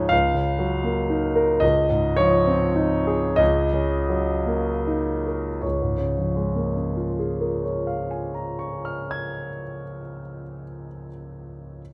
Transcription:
0, 0, Header, 1, 2, 480
1, 0, Start_track
1, 0, Key_signature, -5, "major"
1, 0, Tempo, 1001669
1, 778, Time_signature, 6, 3, 24, 8
1, 778, Tempo, 1136364
1, 1258, Tempo, 1327434
1, 1738, Tempo, 1542416
1, 2218, Tempo, 1339286
1, 3178, Tempo, 1312910
1, 4502, End_track
2, 0, Start_track
2, 0, Title_t, "Grand piano"
2, 0, Program_c, 0, 0
2, 0, Control_c, 0, 64, 127
2, 0, Note_on_c, 0, 37, 35
2, 0, Note_on_c, 0, 44, 30
2, 0, Note_on_c, 0, 53, 29
2, 0, Note_on_c, 0, 56, 26
2, 0, Note_on_c, 0, 63, 33
2, 0, Note_on_c, 0, 73, 31
2, 0, Note_on_c, 0, 75, 53
2, 42, Note_on_c, 0, 77, 65
2, 52, Note_off_c, 0, 37, 0
2, 52, Note_on_c, 0, 37, 37
2, 55, Note_off_c, 0, 73, 0
2, 66, Control_c, 0, 64, 0
2, 68, Note_off_c, 0, 44, 0
2, 68, Note_off_c, 0, 56, 0
2, 68, Note_off_c, 0, 63, 0
2, 69, Note_off_c, 0, 53, 0
2, 71, Note_off_c, 0, 75, 0
2, 163, Control_c, 0, 64, 127
2, 164, Note_on_c, 0, 49, 27
2, 282, Note_on_c, 0, 54, 30
2, 355, Note_off_c, 0, 49, 0
2, 400, Note_on_c, 0, 58, 27
2, 475, Note_off_c, 0, 54, 0
2, 526, Note_on_c, 0, 63, 28
2, 598, Note_off_c, 0, 58, 0
2, 649, Note_on_c, 0, 70, 35
2, 726, Note_off_c, 0, 63, 0
2, 756, Note_off_c, 0, 37, 0
2, 767, Note_on_c, 0, 75, 57
2, 771, Note_off_c, 0, 77, 0
2, 774, Note_on_c, 0, 37, 37
2, 777, Note_off_c, 0, 70, 0
2, 787, Control_c, 0, 64, 0
2, 881, Control_c, 0, 64, 127
2, 894, Note_on_c, 0, 44, 31
2, 1006, Note_off_c, 0, 75, 0
2, 1007, Note_on_c, 0, 73, 65
2, 1013, Note_on_c, 0, 53, 34
2, 1083, Note_off_c, 0, 44, 0
2, 1133, Note_on_c, 0, 60, 29
2, 1208, Note_off_c, 0, 53, 0
2, 1257, Note_on_c, 0, 63, 34
2, 1325, Note_off_c, 0, 60, 0
2, 1370, Note_on_c, 0, 68, 34
2, 1439, Note_off_c, 0, 63, 0
2, 1470, Note_off_c, 0, 37, 0
2, 1476, Note_on_c, 0, 75, 60
2, 1481, Note_on_c, 0, 37, 45
2, 1484, Note_off_c, 0, 73, 0
2, 1486, Note_off_c, 0, 68, 0
2, 1497, Control_c, 0, 64, 0
2, 1583, Control_c, 0, 64, 127
2, 1610, Note_on_c, 0, 49, 28
2, 1732, Note_off_c, 0, 75, 0
2, 1739, Note_on_c, 0, 54, 28
2, 1808, Note_off_c, 0, 49, 0
2, 1855, Note_on_c, 0, 58, 30
2, 1931, Note_off_c, 0, 54, 0
2, 1982, Note_on_c, 0, 63, 27
2, 2058, Note_off_c, 0, 58, 0
2, 2107, Note_on_c, 0, 70, 27
2, 2174, Note_off_c, 0, 63, 0
2, 2203, Note_off_c, 0, 37, 0
2, 2213, Note_on_c, 0, 73, 38
2, 2218, Note_off_c, 0, 70, 0
2, 2218, Note_on_c, 0, 37, 30
2, 2227, Control_c, 0, 64, 0
2, 2285, Note_on_c, 0, 44, 29
2, 2330, Control_c, 0, 64, 127
2, 2342, Note_on_c, 0, 49, 29
2, 2413, Note_on_c, 0, 53, 30
2, 2479, Note_on_c, 0, 56, 30
2, 2549, Note_on_c, 0, 58, 31
2, 2623, Note_on_c, 0, 61, 25
2, 2698, Note_on_c, 0, 65, 27
2, 2778, Note_on_c, 0, 68, 29
2, 2854, Note_on_c, 0, 70, 28
2, 2933, Note_off_c, 0, 73, 0
2, 2939, Note_on_c, 0, 73, 26
2, 3020, Note_on_c, 0, 77, 26
2, 3106, Note_on_c, 0, 80, 26
2, 3191, Note_on_c, 0, 82, 26
2, 3280, Note_on_c, 0, 85, 25
2, 3376, Note_on_c, 0, 89, 23
2, 3471, Note_on_c, 0, 92, 23
2, 3536, Note_off_c, 0, 37, 0
2, 3605, Note_off_c, 0, 44, 0
2, 3662, Note_off_c, 0, 49, 0
2, 3735, Note_off_c, 0, 53, 0
2, 3802, Note_off_c, 0, 56, 0
2, 3873, Note_off_c, 0, 58, 0
2, 3949, Note_off_c, 0, 61, 0
2, 4026, Note_off_c, 0, 65, 0
2, 4107, Note_off_c, 0, 68, 0
2, 4185, Note_off_c, 0, 70, 0
2, 4190, Note_off_c, 0, 85, 0
2, 4191, Note_off_c, 0, 82, 0
2, 4191, Note_off_c, 0, 89, 0
2, 4191, Note_off_c, 0, 92, 0
2, 4192, Note_off_c, 0, 77, 0
2, 4192, Note_off_c, 0, 80, 0
2, 4193, Note_off_c, 0, 73, 0
2, 4459, Control_c, 0, 64, 0
2, 4502, End_track
0, 0, End_of_file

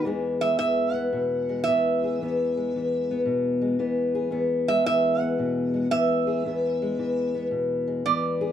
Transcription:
0, 0, Header, 1, 3, 480
1, 0, Start_track
1, 0, Key_signature, 4, "major"
1, 0, Tempo, 532860
1, 50, Time_signature, 4, 2, 24, 8
1, 7677, End_track
2, 0, Start_track
2, 0, Title_t, "Resonator guitar played with a steel bar"
2, 0, Program_c, 0, 25
2, 370, Note_on_c, 0, 76, 84
2, 518, Note_off_c, 0, 76, 0
2, 529, Note_on_c, 0, 76, 81
2, 837, Note_off_c, 0, 76, 0
2, 837, Note_on_c, 0, 78, 76
2, 1464, Note_off_c, 0, 78, 0
2, 1474, Note_on_c, 0, 76, 97
2, 2885, Note_off_c, 0, 76, 0
2, 4219, Note_on_c, 0, 76, 79
2, 4371, Note_off_c, 0, 76, 0
2, 4381, Note_on_c, 0, 76, 85
2, 4681, Note_off_c, 0, 76, 0
2, 4681, Note_on_c, 0, 78, 82
2, 5308, Note_off_c, 0, 78, 0
2, 5326, Note_on_c, 0, 76, 97
2, 6732, Note_off_c, 0, 76, 0
2, 7257, Note_on_c, 0, 74, 85
2, 7677, Note_off_c, 0, 74, 0
2, 7677, End_track
3, 0, Start_track
3, 0, Title_t, "Steel-string acoustic guitar"
3, 0, Program_c, 1, 25
3, 35, Note_on_c, 1, 40, 74
3, 44, Note_on_c, 1, 52, 66
3, 55, Note_on_c, 1, 56, 59
3, 60, Note_on_c, 1, 59, 63
3, 66, Note_on_c, 1, 68, 66
3, 370, Note_off_c, 1, 56, 0
3, 373, Note_on_c, 1, 56, 53
3, 532, Note_off_c, 1, 52, 0
3, 536, Note_on_c, 1, 52, 58
3, 845, Note_off_c, 1, 59, 0
3, 849, Note_on_c, 1, 59, 55
3, 1015, Note_on_c, 1, 47, 67
3, 1340, Note_off_c, 1, 56, 0
3, 1343, Note_on_c, 1, 56, 50
3, 1491, Note_off_c, 1, 47, 0
3, 1502, Note_off_c, 1, 52, 0
3, 1506, Note_on_c, 1, 52, 61
3, 1512, Note_off_c, 1, 59, 0
3, 1515, Note_on_c, 1, 59, 62
3, 1832, Note_off_c, 1, 68, 0
3, 1835, Note_on_c, 1, 68, 61
3, 1990, Note_off_c, 1, 40, 0
3, 1993, Note_on_c, 1, 40, 79
3, 2003, Note_off_c, 1, 59, 0
3, 2007, Note_on_c, 1, 59, 62
3, 2314, Note_off_c, 1, 56, 0
3, 2318, Note_on_c, 1, 56, 54
3, 2482, Note_off_c, 1, 52, 0
3, 2486, Note_on_c, 1, 52, 56
3, 2797, Note_off_c, 1, 59, 0
3, 2801, Note_on_c, 1, 59, 66
3, 2932, Note_on_c, 1, 47, 65
3, 3253, Note_off_c, 1, 56, 0
3, 3256, Note_on_c, 1, 56, 50
3, 3410, Note_off_c, 1, 47, 0
3, 3410, Note_off_c, 1, 52, 0
3, 3414, Note_on_c, 1, 52, 66
3, 3416, Note_off_c, 1, 59, 0
3, 3420, Note_on_c, 1, 59, 62
3, 3734, Note_off_c, 1, 68, 0
3, 3738, Note_on_c, 1, 68, 71
3, 3877, Note_off_c, 1, 40, 0
3, 3881, Note_on_c, 1, 40, 74
3, 3887, Note_off_c, 1, 59, 0
3, 3890, Note_on_c, 1, 59, 69
3, 4213, Note_off_c, 1, 56, 0
3, 4217, Note_on_c, 1, 56, 60
3, 4378, Note_off_c, 1, 52, 0
3, 4382, Note_on_c, 1, 52, 60
3, 4693, Note_off_c, 1, 59, 0
3, 4696, Note_on_c, 1, 59, 63
3, 4853, Note_on_c, 1, 47, 66
3, 5159, Note_off_c, 1, 56, 0
3, 5170, Note_on_c, 1, 56, 50
3, 5310, Note_off_c, 1, 52, 0
3, 5320, Note_off_c, 1, 59, 0
3, 5320, Note_on_c, 1, 52, 65
3, 5323, Note_on_c, 1, 59, 64
3, 5331, Note_off_c, 1, 47, 0
3, 5644, Note_off_c, 1, 68, 0
3, 5648, Note_on_c, 1, 68, 63
3, 5791, Note_off_c, 1, 68, 0
3, 5806, Note_off_c, 1, 40, 0
3, 5815, Note_on_c, 1, 40, 75
3, 5818, Note_off_c, 1, 59, 0
3, 5822, Note_on_c, 1, 59, 63
3, 6128, Note_off_c, 1, 56, 0
3, 6142, Note_on_c, 1, 56, 57
3, 6283, Note_off_c, 1, 52, 0
3, 6294, Note_on_c, 1, 52, 62
3, 6611, Note_off_c, 1, 59, 0
3, 6615, Note_on_c, 1, 59, 61
3, 6765, Note_on_c, 1, 47, 64
3, 7083, Note_off_c, 1, 56, 0
3, 7094, Note_on_c, 1, 56, 52
3, 7248, Note_off_c, 1, 47, 0
3, 7250, Note_off_c, 1, 59, 0
3, 7253, Note_off_c, 1, 52, 0
3, 7262, Note_on_c, 1, 52, 64
3, 7263, Note_on_c, 1, 59, 62
3, 7576, Note_on_c, 1, 68, 69
3, 7677, Note_off_c, 1, 40, 0
3, 7677, Note_off_c, 1, 52, 0
3, 7677, Note_off_c, 1, 56, 0
3, 7677, Note_off_c, 1, 59, 0
3, 7677, Note_off_c, 1, 68, 0
3, 7677, End_track
0, 0, End_of_file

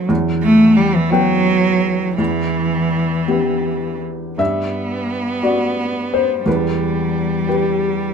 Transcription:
0, 0, Header, 1, 3, 480
1, 0, Start_track
1, 0, Key_signature, 1, "minor"
1, 0, Tempo, 696056
1, 66, Time_signature, 6, 3, 24, 8
1, 1508, Tempo, 735294
1, 2948, Tempo, 691244
1, 5548, End_track
2, 0, Start_track
2, 0, Title_t, "Felt piano"
2, 0, Program_c, 0, 0
2, 0, Control_c, 0, 64, 127
2, 0, Note_on_c, 0, 42, 39
2, 0, Note_on_c, 0, 57, 38
2, 0, Note_on_c, 0, 69, 41
2, 0, Note_on_c, 0, 72, 42
2, 61, Note_on_c, 0, 40, 57
2, 78, Control_c, 0, 64, 0
2, 81, Note_off_c, 0, 57, 0
2, 83, Note_off_c, 0, 69, 0
2, 83, Note_off_c, 0, 72, 0
2, 84, Note_off_c, 0, 42, 0
2, 183, Control_c, 0, 64, 127
2, 753, Note_off_c, 0, 40, 0
2, 773, Note_on_c, 0, 79, 46
2, 775, Note_on_c, 0, 59, 43
2, 776, Note_on_c, 0, 71, 51
2, 1477, Note_off_c, 0, 79, 0
2, 1478, Note_off_c, 0, 59, 0
2, 1479, Note_off_c, 0, 71, 0
2, 1506, Note_on_c, 0, 40, 41
2, 1520, Control_c, 0, 64, 0
2, 1641, Control_c, 0, 64, 127
2, 2201, Note_off_c, 0, 40, 0
2, 2221, Note_on_c, 0, 59, 30
2, 2223, Note_on_c, 0, 67, 30
2, 2225, Note_on_c, 0, 71, 32
2, 2921, Note_off_c, 0, 59, 0
2, 2922, Note_off_c, 0, 67, 0
2, 2923, Note_off_c, 0, 71, 0
2, 2940, Note_on_c, 0, 43, 36
2, 2945, Note_on_c, 0, 76, 62
2, 2960, Control_c, 0, 64, 0
2, 3086, Control_c, 0, 64, 127
2, 3640, Note_off_c, 0, 76, 0
2, 3667, Note_on_c, 0, 66, 37
2, 3669, Note_on_c, 0, 74, 38
2, 4159, Note_on_c, 0, 72, 52
2, 4351, Note_off_c, 0, 43, 0
2, 4355, Note_off_c, 0, 66, 0
2, 4356, Note_off_c, 0, 74, 0
2, 4374, Note_off_c, 0, 72, 0
2, 4383, Note_on_c, 0, 40, 42
2, 4393, Note_on_c, 0, 71, 57
2, 4397, Control_c, 0, 64, 0
2, 4513, Control_c, 0, 64, 127
2, 5077, Note_off_c, 0, 71, 0
2, 5095, Note_on_c, 0, 71, 37
2, 5097, Note_on_c, 0, 67, 34
2, 5548, Note_off_c, 0, 40, 0
2, 5548, Note_off_c, 0, 67, 0
2, 5548, Note_off_c, 0, 71, 0
2, 5548, End_track
3, 0, Start_track
3, 0, Title_t, "Cello"
3, 0, Program_c, 1, 42
3, 299, Note_on_c, 1, 57, 81
3, 531, Note_on_c, 1, 55, 69
3, 541, Note_off_c, 1, 57, 0
3, 660, Note_on_c, 1, 52, 66
3, 670, Note_off_c, 1, 55, 0
3, 763, Note_on_c, 1, 54, 80
3, 773, Note_off_c, 1, 52, 0
3, 1500, Note_off_c, 1, 54, 0
3, 1512, Note_on_c, 1, 52, 63
3, 2688, Note_off_c, 1, 52, 0
3, 2949, Note_on_c, 1, 59, 47
3, 4356, Note_off_c, 1, 59, 0
3, 4382, Note_on_c, 1, 55, 46
3, 5548, Note_off_c, 1, 55, 0
3, 5548, End_track
0, 0, End_of_file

